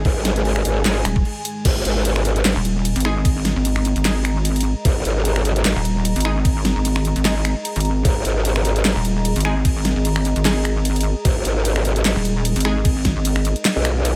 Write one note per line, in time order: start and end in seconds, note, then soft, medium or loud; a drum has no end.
0.00 1.61 D#3 medium
0.00 1.61 G#3 medium
0.00 1.65 G#3 medium
0.00 1.63 G#4 medium
0.00 1.67 G#5 medium
0.05 0.64 G#1 loud
0.05 kick loud
0.05 crash medium
0.25 snare medium
0.25 closed hi-hat medium
0.36 closed hi-hat soft
0.45 crash soft
0.56 finger snap medium
0.65 1.04 G#1 loud
0.65 closed hi-hat medium
0.85 0.95 G#3 medium
0.85 0.95 D#4 medium
0.85 0.95 G#4 medium
0.85 snare loud
0.85 clap loud
0.85 crash medium
1.05 1.24 D#1 loud
1.05 finger snap medium
1.05 closed hi-hat medium
1.16 kick loud
1.25 crash soft
1.45 closed hi-hat medium
1.65 1.84 G#1 loud
1.65 14.16 G#4 medium
1.65 kick loud
1.65 closed hi-hat medium
1.65 crash loud
1.65 crash medium
1.78 14.16 D#5 medium
1.85 2.44 G#1 loud
1.85 closed hi-hat medium
2.03 14.16 A#5 medium
2.03 closed hi-hat medium
2.03 crash soft
2.16 finger snap medium
2.25 closed hi-hat medium
2.36 closed hi-hat soft
2.45 2.54 G#1 loud
2.45 snare loud
2.45 clap loud
2.45 closed hi-hat medium
2.45 crash medium
2.56 2.94 D#1 loud
2.65 closed hi-hat medium
2.85 closed hi-hat medium
2.85 crash soft
2.96 3.54 G#1 loud
2.96 closed hi-hat medium
3.00 closed hi-hat medium
3.05 3.15 G#3 loud
3.05 3.15 D#4 medium
3.05 3.15 G#4 loud
3.05 finger snap medium
3.25 kick loud
3.25 closed hi-hat medium
3.25 crash medium
3.45 snare medium
3.45 closed hi-hat medium
3.56 3.94 G#1 loud
3.65 closed hi-hat medium
3.65 crash soft
3.76 finger snap medium
3.85 closed hi-hat medium
3.96 4.74 G#1 loud
3.96 closed hi-hat soft
4.05 4.15 G#3 medium
4.05 4.15 D#4 medium
4.05 4.15 G#4 loud
4.05 snare loud
4.05 clap loud
4.05 closed hi-hat medium
4.05 crash medium
4.25 finger snap medium
4.25 closed hi-hat medium
4.45 closed hi-hat medium
4.45 crash soft
4.56 closed hi-hat medium
4.61 closed hi-hat medium
4.85 5.04 G#1 loud
4.85 kick loud
4.85 closed hi-hat medium
4.85 crash medium
5.05 5.64 G#1 loud
5.05 closed hi-hat medium
5.25 closed hi-hat medium
5.25 crash soft
5.36 finger snap medium
5.45 closed hi-hat medium
5.56 closed hi-hat soft
5.65 5.74 G#1 loud
5.65 snare loud
5.65 clap loud
5.65 closed hi-hat medium
5.65 crash medium
5.76 6.14 D#1 loud
5.85 closed hi-hat medium
6.05 closed hi-hat medium
6.05 crash soft
6.16 6.74 G#1 loud
6.16 closed hi-hat medium
6.21 closed hi-hat medium
6.25 6.35 G#3 loud
6.25 6.35 D#4 medium
6.25 6.35 G#4 loud
6.25 finger snap medium
6.45 kick loud
6.45 closed hi-hat medium
6.45 crash medium
6.65 snare medium
6.65 closed hi-hat medium
6.76 7.14 G#1 loud
6.85 closed hi-hat medium
6.85 crash soft
6.96 finger snap medium
7.05 closed hi-hat medium
7.16 7.54 G#1 loud
7.16 closed hi-hat soft
7.25 7.35 G#3 medium
7.25 7.35 D#4 medium
7.25 7.35 G#4 medium
7.25 snare loud
7.25 clap medium
7.25 closed hi-hat medium
7.25 crash medium
7.45 finger snap medium
7.45 closed hi-hat medium
7.65 closed hi-hat medium
7.65 crash soft
7.76 8.04 G#1 loud
7.76 closed hi-hat soft
7.80 closed hi-hat medium
7.85 closed hi-hat soft
8.05 8.24 G#1 loud
8.05 kick loud
8.05 closed hi-hat medium
8.05 crash medium
8.25 8.84 G#1 loud
8.25 closed hi-hat medium
8.45 closed hi-hat medium
8.45 crash soft
8.56 finger snap medium
8.65 closed hi-hat medium
8.76 closed hi-hat soft
8.85 8.94 G#1 loud
8.85 snare loud
8.85 clap medium
8.85 closed hi-hat medium
8.85 crash medium
8.96 9.34 D#1 loud
9.05 closed hi-hat medium
9.25 closed hi-hat medium
9.25 crash soft
9.36 9.94 G#1 loud
9.36 closed hi-hat soft
9.40 closed hi-hat medium
9.45 9.55 G#3 loud
9.45 9.55 D#4 medium
9.45 9.55 G#4 loud
9.45 finger snap medium
9.65 kick loud
9.65 closed hi-hat medium
9.65 crash medium
9.85 snare medium
9.85 closed hi-hat medium
9.96 10.34 G#1 loud
10.05 closed hi-hat medium
10.05 crash soft
10.16 finger snap medium
10.25 closed hi-hat medium
10.36 11.14 G#1 loud
10.36 closed hi-hat soft
10.45 10.55 G#3 medium
10.45 10.55 D#4 medium
10.45 10.55 G#4 loud
10.45 snare loud
10.45 clap medium
10.45 closed hi-hat medium
10.45 crash medium
10.65 finger snap medium
10.65 closed hi-hat medium
10.85 closed hi-hat medium
10.85 crash soft
10.96 closed hi-hat medium
11.01 closed hi-hat medium
11.25 11.44 G#1 loud
11.25 kick loud
11.25 closed hi-hat medium
11.25 crash medium
11.45 12.04 G#1 loud
11.45 closed hi-hat medium
11.65 closed hi-hat medium
11.65 crash soft
11.76 finger snap medium
11.85 closed hi-hat medium
11.96 closed hi-hat soft
12.05 12.14 G#1 loud
12.05 snare loud
12.05 clap medium
12.05 closed hi-hat medium
12.05 crash medium
12.16 12.54 D#1 loud
12.25 closed hi-hat medium
12.45 closed hi-hat medium
12.45 crash medium
12.56 13.14 G#1 loud
12.56 closed hi-hat medium
12.60 closed hi-hat medium
12.65 12.75 G#3 loud
12.65 12.75 D#4 medium
12.65 12.75 G#4 loud
12.65 finger snap medium
12.85 kick loud
12.85 closed hi-hat medium
12.85 crash medium
13.05 kick medium
13.05 snare medium
13.05 closed hi-hat medium
13.16 13.54 G#1 loud
13.25 closed hi-hat medium
13.25 crash soft
13.36 finger snap medium
13.45 closed hi-hat medium
13.56 closed hi-hat soft
13.65 snare loud
13.65 clap medium
13.65 closed hi-hat medium
13.65 crash medium
13.76 14.14 B1 loud
13.85 finger snap medium
13.85 closed hi-hat medium
14.05 closed hi-hat medium
14.05 crash soft